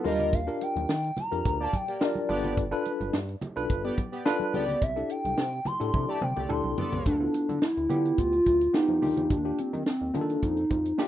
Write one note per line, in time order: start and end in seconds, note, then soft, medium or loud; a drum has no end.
0.04 0.49 D#2 loud
0.04 0.29 G3 loud
0.04 0.39 D4 medium
0.04 0.39 F4 medium
0.04 0.29 F4 loud
0.04 0.39 G4 medium
0.04 0.39 A#4 medium
0.04 0.29 A#4 loud
0.04 0.36 D#5 loud
0.04 open hi-hat medium
0.04 muted conga soft
0.04 high conga medium
0.19 closed hi-hat medium
0.19 low conga medium
0.33 0.64 F5 loud
0.33 kick loud
0.33 closed hi-hat loud
0.33 muted conga soft
0.47 0.92 D4 medium
0.47 0.92 F4 medium
0.47 0.92 G4 medium
0.47 0.92 A#4 medium
0.47 closed hi-hat soft
0.61 1.21 G5 loud
0.61 closed hi-hat medium
0.61 muted conga soft
0.76 0.86 D#2 loud
0.76 closed hi-hat soft
0.76 high conga medium
0.89 1.11 D#3 medium
0.89 snare loud
0.89 muted conga soft
1.04 closed hi-hat soft
1.17 1.64 A#5 loud
1.17 closed hi-hat medium
1.17 muted conga soft
1.17 high conga medium
1.17 low conga medium
1.31 1.43 F2 medium
1.31 1.68 D4 medium
1.31 1.69 F4 medium
1.31 1.69 G4 medium
1.31 1.69 A#4 medium
1.31 closed hi-hat soft
1.45 1.68 D2 loud
1.45 kick loud
1.45 closed hi-hat medium
1.45 muted conga soft
1.60 1.71 A#3 loud
1.60 1.71 G4 medium
1.60 1.71 D5 loud
1.60 1.77 A5 loud
1.73 2.05 G5 loud
1.73 kick medium
1.73 closed hi-hat medium
1.73 muted conga soft
1.73 high conga medium
1.88 1.99 A#3 medium
1.88 1.99 G4 medium
1.88 1.99 D5 medium
1.88 closed hi-hat medium
2.01 2.27 D4 medium
2.01 2.28 F4 medium
2.01 2.29 G4 medium
2.01 2.30 A#4 loud
2.01 2.59 D5 medium
2.01 snare loud
2.01 muted conga soft
2.15 closed hi-hat soft
2.15 high conga medium
2.29 2.74 G1 loud
2.29 2.53 B3 loud
2.29 2.63 D4 medium
2.29 2.63 F4 medium
2.29 2.53 G4 loud
2.29 2.63 A4 medium
2.29 2.63 B4 medium
2.29 2.53 D5 loud
2.29 open hi-hat medium
2.29 high conga medium
2.44 closed hi-hat medium
2.44 low conga medium
2.57 kick loud
2.57 closed hi-hat loud
2.57 muted conga soft
2.71 3.16 D4 medium
2.71 3.16 F4 medium
2.71 3.16 A4 medium
2.71 3.16 B4 loud
2.85 closed hi-hat medium
2.85 muted conga soft
3.00 3.11 G1 loud
3.00 closed hi-hat soft
3.00 high conga medium
3.13 3.36 G2 medium
3.13 snare loud
3.29 closed hi-hat soft
3.41 closed hi-hat medium
3.41 muted conga soft
3.41 high conga medium
3.41 low conga medium
3.56 3.67 B1 medium
3.56 3.93 D4 medium
3.56 3.93 F4 medium
3.56 3.93 A4 medium
3.56 3.93 B4 loud
3.56 closed hi-hat soft
3.70 3.92 G1 medium
3.70 kick loud
3.70 closed hi-hat medium
3.84 3.96 B3 medium
3.84 3.96 G4 loud
3.84 3.96 D5 loud
3.84 closed hi-hat soft
3.98 kick medium
3.98 closed hi-hat medium
3.98 muted conga soft
3.98 high conga medium
4.12 4.24 B3 medium
4.12 4.23 G4 medium
4.12 4.23 D5 medium
4.12 closed hi-hat medium
4.25 4.63 D4 loud
4.25 4.63 F4 loud
4.25 4.64 A4 loud
4.25 4.64 B4 loud
4.25 snare loud
4.40 high conga medium
4.53 4.76 C#2 medium
4.53 4.77 B3 loud
4.53 4.77 G4 loud
4.53 4.77 D5 loud
4.53 4.84 D5 medium
4.53 open hi-hat medium
4.53 muted conga soft
4.53 high conga medium
4.68 closed hi-hat medium
4.68 low conga medium
4.81 5.04 C2 loud
4.81 5.12 E5 loud
4.81 kick loud
4.81 closed hi-hat loud
4.81 muted conga soft
4.96 5.40 D4 medium
4.96 5.41 E4 medium
4.96 5.41 G4 medium
4.96 5.41 A4 medium
4.96 closed hi-hat soft
5.10 5.68 G5 loud
5.10 closed hi-hat medium
5.25 5.35 C2 loud
5.25 closed hi-hat medium
5.25 high conga medium
5.38 5.60 C3 medium
5.38 snare loud
5.38 muted conga soft
5.65 6.11 C6 loud
5.65 closed hi-hat medium
5.65 muted conga soft
5.65 high conga medium
5.65 low conga medium
5.80 5.91 A2 medium
5.80 6.17 D4 medium
5.80 6.17 E4 medium
5.80 6.17 G4 medium
5.80 6.17 A4 medium
5.80 closed hi-hat soft
5.94 6.06 C3 loud
5.94 kick loud
5.94 high tom medium
6.08 6.20 A3 medium
6.08 6.20 G4 loud
6.08 6.20 D5 loud
6.08 6.25 A5 loud
6.21 6.33 C3 loud
6.21 6.53 G5 loud
6.21 mid tom medium
6.21 muted conga soft
6.21 high conga medium
6.36 6.47 C2 loud
6.36 6.47 A3 medium
6.36 6.48 G4 medium
6.36 6.47 D5 medium
6.36 mid tom medium
6.49 6.62 D2 medium
6.49 6.87 D4 medium
6.49 6.87 E4 medium
6.49 6.88 G4 medium
6.49 6.88 A4 loud
6.49 7.06 C6 medium
6.49 mid tom medium
6.49 muted conga soft
6.64 6.75 C2 medium
6.64 high conga medium
6.77 7.14 B3 loud
6.77 7.14 A4 medium
6.77 7.14 D5 loud
6.77 floor tom loud
6.77 high conga medium
6.77 low conga medium
6.92 7.03 C2 loud
6.92 floor tom loud
6.92 low conga medium
7.05 7.28 D2 loud
7.05 7.64 D4 loud
7.05 kick loud
7.05 closed hi-hat loud
7.05 muted conga soft
7.20 7.57 B3 medium
7.20 7.57 E4 medium
7.20 7.57 F4 medium
7.20 7.58 A4 medium
7.34 closed hi-hat medium
7.34 muted conga soft
7.49 7.59 D3 loud
7.49 closed hi-hat soft
7.49 high conga medium
7.62 8.20 E4 loud
7.62 snare loud
7.62 muted conga soft
7.77 7.87 D2 medium
7.77 closed hi-hat soft
7.89 8.12 D3 medium
7.89 8.35 B3 medium
7.89 8.35 E4 medium
7.89 8.35 F4 medium
7.89 8.36 G4 loud
7.89 closed hi-hat medium
7.89 high conga medium
7.89 low conga medium
8.05 closed hi-hat soft
8.18 8.40 D2 loud
8.18 8.77 F4 loud
8.18 kick loud
8.18 closed hi-hat medium
8.18 muted conga soft
8.33 closed hi-hat soft
8.46 8.68 D2 loud
8.46 kick medium
8.46 closed hi-hat medium
8.46 muted conga soft
8.46 high conga medium
8.61 closed hi-hat medium
8.73 9.02 B3 medium
8.73 9.33 D#4 loud
8.73 9.02 E4 medium
8.73 9.01 F4 medium
8.73 9.01 G4 medium
8.73 snare loud
8.73 muted conga soft
8.88 9.00 F2 loud
8.88 high conga medium
9.02 9.14 D#2 loud
9.02 9.36 A#3 medium
9.02 9.36 D4 medium
9.02 9.36 F4 medium
9.02 9.36 G4 medium
9.02 open hi-hat medium
9.02 high conga medium
9.02 low conga medium
9.17 9.27 E2 loud
9.17 closed hi-hat medium
9.17 low conga medium
9.30 9.53 D#2 loud
9.30 9.61 D4 loud
9.30 kick loud
9.30 closed hi-hat medium
9.30 muted conga soft
9.44 9.82 A#3 medium
9.44 9.82 D4 medium
9.44 9.82 F4 medium
9.44 9.82 G4 medium
9.58 9.87 C4 loud
9.58 closed hi-hat medium
9.58 muted conga soft
9.73 9.84 D#3 loud
9.73 closed hi-hat soft
9.73 high conga medium
9.86 10.17 C4 medium
9.86 snare loud
10.01 10.12 D#2 loud
10.14 10.37 D#3 medium
10.14 10.60 A#3 medium
10.14 10.60 D4 medium
10.14 10.45 D4 medium
10.14 10.60 F4 medium
10.14 10.21 G#4 medium
10.14 closed hi-hat medium
10.14 muted conga soft
10.14 high conga medium
10.14 low conga medium
10.21 10.63 A4 medium
10.30 closed hi-hat soft
10.42 10.65 F2 loud
10.42 10.99 D#4 loud
10.42 kick loud
10.42 closed hi-hat medium
10.42 muted conga soft
10.57 closed hi-hat soft
10.71 10.93 F2 medium
10.71 kick medium
10.71 closed hi-hat medium
10.71 muted conga soft
10.71 high conga medium
10.85 closed hi-hat medium
10.98 11.08 A#3 loud
10.98 11.08 D4 medium
10.98 11.08 F4 medium
10.98 11.08 G4 loud
10.98 snare loud
10.98 muted conga soft